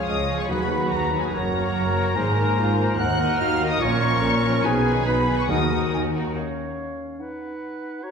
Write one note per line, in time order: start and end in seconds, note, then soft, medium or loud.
0.00 0.29 F3 soft
0.00 0.29 F4 soft
0.00 0.28 G#4 soft
0.00 0.49 G#4 soft
0.00 0.27 C#5 soft
0.00 0.46 C#5 medium
0.00 0.51 F5 medium
0.07 0.45 C#2 medium
0.07 0.39 D#5 medium
0.07 0.39 D#6 medium
0.29 0.51 F3 soft
0.29 0.51 F4 soft
0.29 0.50 G#4 soft
0.29 0.50 C#5 soft
0.40 0.45 C#5 medium
0.40 0.50 C#6 medium
0.48 0.86 D#2 medium
0.48 0.87 D#2 medium
0.48 1.08 D#3 medium
0.48 0.71 F#3 soft
0.48 0.71 D#4 soft
0.48 1.31 F#4 soft
0.48 0.70 F#4 soft
0.48 0.89 G#4 medium
0.48 0.91 B4 medium
0.48 1.36 B4 medium
0.48 0.71 B4 soft
0.48 1.32 F#5 medium
0.48 0.90 B5 medium
0.72 1.11 F#3 soft
0.72 1.11 D#4 soft
0.72 1.11 F#4 soft
0.72 1.11 B4 soft
0.89 1.28 D#2 medium
0.89 1.21 A#5 medium
0.89 1.22 A#5 medium
0.94 1.34 F#4 medium
1.12 1.32 F#3 soft
1.12 1.33 D#4 soft
1.12 1.33 F#4 soft
1.12 1.33 B4 soft
1.21 1.27 G#4 soft
1.21 1.32 G#5 medium
1.31 1.69 F#1 medium
1.31 1.70 F#2 medium
1.31 2.17 F#4 soft
1.31 2.95 A#4 medium
1.31 2.17 A#4 medium
1.31 2.18 C#5 soft
1.31 2.17 F#5 medium
1.31 2.95 A#5 medium
1.53 1.94 F#3 soft
1.53 1.94 A#3 soft
1.53 1.94 F#4 medium
1.53 1.94 C#5 medium
1.73 2.11 F#1 medium
1.73 2.10 F#2 medium
1.95 2.16 F#3 soft
1.95 2.15 A#3 soft
1.95 2.16 F#4 soft
1.95 2.16 C#5 soft
2.14 2.52 G#1 medium
2.14 2.51 G#2 medium
2.14 2.36 D#3 soft
2.14 2.35 A#3 soft
2.14 2.98 D#4 medium
2.14 2.57 G#4 medium
2.14 2.35 A#4 soft
2.14 2.35 C5 soft
2.14 2.99 C5 medium
2.14 2.98 G#5 medium
2.36 2.77 D#3 medium
2.36 2.77 A#3 medium
2.36 2.77 A#4 medium
2.36 2.77 C5 medium
2.57 2.93 G#1 medium
2.57 2.93 G#2 medium
2.57 2.98 F4 medium
2.78 2.98 D#3 medium
2.78 2.98 A#3 medium
2.78 2.98 A#4 medium
2.78 2.98 C5 medium
2.97 3.34 D#2 medium
2.97 3.35 D#2 medium
2.97 3.80 D#4 medium
2.97 3.40 D#4 medium
2.97 3.80 A#4 medium
2.97 3.40 F#5 medium
2.97 3.58 A#5 medium
2.97 3.38 F#6 medium
3.18 3.60 D#3 medium
3.18 3.60 A#3 medium
3.18 3.59 A#4 medium
3.18 3.59 D#5 medium
3.39 3.76 D#2 medium
3.39 3.81 F#4 medium
3.39 3.70 F5 medium
3.39 3.70 F6 loud
3.60 3.81 D#3 medium
3.60 3.81 A#3 medium
3.60 3.80 A#4 medium
3.60 3.81 D#5 medium
3.70 3.81 D#5 medium
3.70 3.80 D#6 medium
3.79 4.18 A#1 medium
3.79 4.18 A#2 medium
3.79 4.01 F3 medium
3.79 4.01 C#4 medium
3.79 4.22 F4 medium
3.79 4.66 F4 medium
3.79 4.66 A#4 medium
3.79 4.01 A#4 medium
3.79 4.65 C#5 medium
3.79 4.00 C#5 medium
3.79 4.67 A#5 medium
3.79 4.64 C#6 loud
4.01 4.43 F3 medium
4.01 4.42 C#4 medium
4.01 4.43 A#4 medium
4.01 4.43 C#5 medium
4.21 4.59 A#1 medium
4.21 4.59 A#2 medium
4.21 4.65 A#4 medium
4.44 4.65 F3 medium
4.44 4.64 C#4 medium
4.44 4.65 A#4 medium
4.44 4.65 C#5 medium
4.63 5.02 B1 medium
4.63 5.02 B2 medium
4.63 5.06 D#4 medium
4.63 5.06 G#4 medium
4.63 5.49 G#4 medium
4.63 5.04 B4 medium
4.63 5.07 G#5 medium
4.84 5.28 D#3 medium
4.84 5.28 D#4 medium
4.84 5.27 G#4 medium
4.84 5.27 B4 medium
5.05 5.44 B1 medium
5.05 5.45 B2 medium
5.05 5.37 D#4 medium
5.05 5.48 B4 medium
5.05 5.38 B4 medium
5.05 5.51 G#5 medium
5.05 5.39 B5 medium
5.28 5.49 D#3 medium
5.28 5.49 D#4 medium
5.28 5.49 G#4 medium
5.28 5.50 B4 medium
5.38 5.49 C#5 medium
5.38 5.51 C#6 medium
5.48 5.87 D#2 medium
5.48 5.88 D#2 medium
5.48 6.10 D#3 medium
5.48 5.71 D#3 soft
5.48 6.13 D#4 medium
5.48 5.70 D#4 soft
5.48 5.70 F#4 medium
5.48 6.15 F#4 medium
5.48 5.70 A#4 medium
5.48 6.13 A#4 medium
5.48 5.93 D#5 medium
5.48 5.89 F#5 medium
5.48 5.92 D#6 medium
5.71 6.14 D#3 soft
5.71 6.14 D#4 soft
5.71 6.13 F#4 soft
5.71 6.13 A#4 medium
5.92 6.30 D#2 medium
5.92 6.31 D#2 medium
5.92 5.99 G#5 medium
6.14 6.36 D#3 medium
6.14 6.36 D#4 soft
6.14 6.35 F#4 soft
6.14 6.35 A#4 soft
6.14 6.35 A#5 medium
6.34 7.21 C#4 soft
6.34 7.15 C#5 soft
6.34 7.21 F5 soft
7.19 8.02 D#4 soft
7.19 8.05 B4 soft
7.19 8.02 F#5 soft
8.03 8.11 F#4 soft
8.03 8.11 C#5 soft
8.03 8.11 A#5 soft